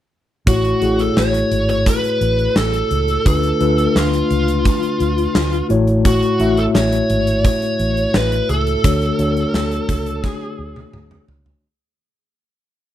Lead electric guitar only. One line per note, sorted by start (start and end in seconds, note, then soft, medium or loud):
0.48 1.01 F#4 medium
1.00 1.16 A4 medium
1.18 1.69 C#5 medium
1.70 1.87 C#5 medium
1.87 2.57 B4 medium
2.57 3.26 A4 medium
3.27 3.98 A4 medium
3.97 5.67 F4 medium
6.06 6.59 F#4 medium
6.58 6.63 A4 medium
6.76 7.45 C#5 loud
7.46 8.17 C#5 loud
8.16 8.47 B4 medium
8.50 10.22 A4 medium
10.22 11.25 G#4 medium